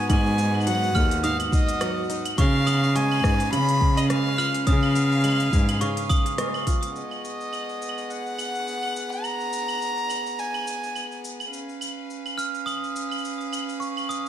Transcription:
Already playing: kora F#3 B3 D#4 G#4, string quartet B3 F#5
0.09 kora G#2, cello G#2, string quartet F#4, violin G#5, kick, open hi-hat, claves, shaker
0.26 shaker
0.38 kora B3, open hi-hat, shaker
0.54 claves
0.60 claves, shaker
0.67 kora F#3, violin F#5, open hi-hat, claves, shaker
0.75 claves
0.83 shaker
0.95 cello D#2, kora G#4, glockenspiel F6, kick, claves, shaker
1.11 open hi-hat, shaker
1.23 kora G#2, violin F5, glockenspiel D#6, open hi-hat, shaker
1.40 open hi-hat, claves, shaker
1.52 violin D#5, kick, shaker
1.69 open hi-hat, shaker
1.81 kora F#3, cross-stick, open hi-hat, claves, shaker
1.98 shaker
2.04 shaker
2.10 kora D#4, open hi-hat, shaker
2.18 shaker
2.25 open hi-hat, claves, shaker
2.38 cello C#3, kora C#3, string quartet C#4 B4 F5, violin F5, glockenspiel C#6, kick, open hi-hat, shaker
2.67 kora B3, glockenspiel D#6, open hi-hat, claves, shaker
2.84 shaker
2.95 kora G#3, violin G#5, glockenspiel C#6, open hi-hat, shaker
3.12 claves, shaker
3.20 claves
3.24 cello G#2, kora G#4, kick, cross-stick, shaker
3.29 claves
3.40 open hi-hat, shaker
3.52 cello C#3, kora C#3, violin B5, open hi-hat, claves, shaker
3.69 open hi-hat, shaker
3.81 kick
3.97 violin D#5, open hi-hat, claves, shaker
4.09 kora G#3, violin F5, cross-stick, open hi-hat, shaker
4.27 shaker
4.38 kora F4, glockenspiel F6, claves, shaker
4.54 open hi-hat, shaker
4.67 kora C#3, cello C#3, violin F5, glockenspiel D#6, kick, open hi-hat, shaker
4.83 claves, shaker
4.95 kora B3, open hi-hat, shaker
5.12 shaker
5.21 kora G#3, open hi-hat, claves, shaker
5.25 claves, shaker
5.30 claves, shaker
5.36 open hi-hat, claves
5.41 shaker
5.52 cello G#2, kora G#4, kick, shaker
5.69 open hi-hat, claves, shaker
5.81 kora C#3, glockenspiel C#6, open hi-hat, shaker
5.97 open hi-hat, shaker
6.00 shaker
6.05 shaker
6.07 shaker
6.09 glockenspiel D#6, kick, open hi-hat, claves, shaker
6.11 shaker
6.26 open hi-hat, shaker
6.38 kora G#3, glockenspiel C#6, cross-stick, open hi-hat, shaker
6.54 claves, shaker
6.67 kora F4, kick, open hi-hat, shaker
6.83 open hi-hat, shaker
6.95 string quartet B3 G#4 F#5, violin D#5, shaker
7.11 claves, shaker
7.25 shaker
7.41 shaker
7.53 claves, shaker
7.69 shaker
7.82 shaker
7.89 claves
7.98 shaker
8.10 violin F#5, shaker
8.26 shaker
8.38 claves, shaker
8.55 shaker
8.68 shaker
8.83 claves, shaker
8.96 shaker
9.12 shaker
9.24 violin A#5, claves, shaker
9.40 shaker
9.53 shaker
9.68 claves, shaker
9.82 shaker
9.98 shaker
10.10 claves, shaker
10.26 shaker
10.39 violin G#5, shaker
10.54 claves, shaker
10.67 shaker
10.84 shaker
10.95 claves, shaker
11.12 shaker
11.24 shaker
11.40 claves, shaker
11.53 string quartet C#4 B4 F5, shaker
11.69 shaker
11.81 claves, shaker
12.10 shaker
12.26 claves, shaker
12.38 glockenspiel F6, shaker
12.55 shaker
12.66 glockenspiel D#6, claves, shaker
12.84 shaker
12.96 shaker
13.11 claves, shaker
13.18 shaker
13.25 shaker
13.33 shaker
13.41 shaker
13.53 claves, shaker
13.69 shaker
13.80 glockenspiel C#6, shaker
13.97 claves, shaker
14.09 glockenspiel D#6, shaker

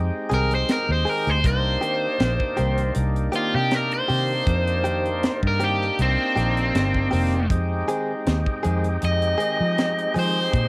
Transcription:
Already playing: tonewheel organ G#3 C4 D#4 G4
0.30 fingered electric bass C2, clean electric guitar D#3 G#3 C4 G#4, snare, closed hi-hat
0.34 overdriven electric guitar A#4
0.51 overdriven electric guitar C5, closed hi-hat
0.69 overdriven electric guitar A#4, snare, closed hi-hat
0.89 fingered electric bass D#2, overdriven electric guitar C5
1.05 clean electric guitar D#3 G#3 C4 G#4, open hi-hat
1.09 overdriven electric guitar A#4
1.27 fingered electric bass D2, overdriven electric guitar C5, closed hi-hat
1.44 fingered electric bass C2, tonewheel organ A#3 D4 D#4 G4, overdriven electric guitar C5, kick, closed hi-hat
1.81 clean electric guitar D#3 A#3 C4 G4, closed hi-hat
2.20 fingered electric bass A#1, snare, closed hi-hat
2.40 kick
2.57 fingered electric bass C2, clean electric guitar D#3 A#3 C4 G4, closed hi-hat
2.78 closed hi-hat
2.95 fingered electric bass C2, closed hi-hat
3.16 closed hi-hat
3.32 clean electric guitar D#3 A#3 C4 G4, overdriven electric guitar F4, closed hi-hat
3.54 fingered electric bass C3, overdriven electric guitar G4
3.71 overdriven electric guitar A#4, snare, closed hi-hat
3.91 overdriven electric guitar C5, closed hi-hat
4.08 fingered electric bass C3, clean electric guitar D#3 A#3 C4 G4, open hi-hat
4.47 fingered electric bass F2, kick, closed hi-hat
4.67 closed hi-hat
4.84 clean electric guitar D#3 A#3 C4 G4, closed hi-hat
5.05 closed hi-hat
5.23 snare, closed hi-hat
5.43 fingered electric bass G2, kick
5.47 overdriven electric guitar A#4
5.60 clean electric guitar D#3 A#3 C4 G4, overdriven electric guitar G4, closed hi-hat
5.81 snare
5.99 fingered electric bass C2, overdriven electric guitar C4, closed hi-hat
6.36 fingered electric bass A#1, clean electric guitar D#3 A#3 C4 G4, snare, closed hi-hat
6.57 closed hi-hat
6.75 fingered electric bass G1, snare, closed hi-hat
6.94 kick
7.11 fingered electric bass F1, clean electric guitar D#3 A#3 C4 G4, open hi-hat
7.32 closed hi-hat
7.50 fingered electric bass F2, tonewheel organ G#3 C4 D#4 G4, kick, closed hi-hat
7.88 clean electric guitar D#3 G#3 C4 G#4, closed hi-hat
8.26 fingered electric bass D#2, snare, closed hi-hat
8.46 kick
8.63 fingered electric bass F2, clean electric guitar D#3 G#3 C4 G#4, closed hi-hat
8.84 closed hi-hat
9.02 fingered electric bass F2, overdriven electric guitar D#5, closed hi-hat
9.22 closed hi-hat
9.38 clean electric guitar D#3 G#3 C4 G#4, closed hi-hat
9.60 fingered electric bass F3
9.78 snare, closed hi-hat
9.98 closed hi-hat
10.14 clean electric guitar D#3 G#3 C4 G#4, fingered electric bass F3, open hi-hat
10.19 overdriven electric guitar C5
10.53 fingered electric bass A#2, kick, closed hi-hat

